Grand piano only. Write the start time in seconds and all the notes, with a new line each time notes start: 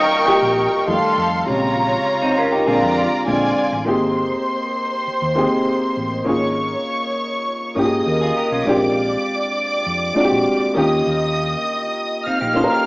Already playing: F3 G3 C#4 D#4 F4 D#5 F5
0.26 G4 G5
0.87 D#3 G3 A3
1.46 C3 C#3 G#3
2.66 D3 G#3 C4
3.26 D3 G#3 C4
3.85 A#3 C4 D#4 G4 G#4
5.35 A#3 C4 D#4 G4 G#4
6.24 A#3 C#4 D#4 F4 G#4
7.75 A#3 C#4 D#4 F4 G4
7.85 G#4
8.65 G#3 C4 D4 F4 G4
10.14 G#3 C4 D4 F4
10.18 F#4
10.25 G4
10.74 A#3 C#4 D#4 F4 G4
12.54 A#3 C#4 D#4 F4 A4
12.64 A#4